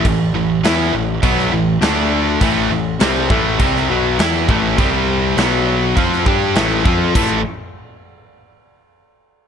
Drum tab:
CC |x---x---x---x---|x---x---x---x---|x---x---x---x---|x---------------|
SD |----o----o--o---|----o----o--o---|----o----o--o---|----------------|
BD |o-------o-------|o-----o-o-----o-|o-------o-o---o-|o---------------|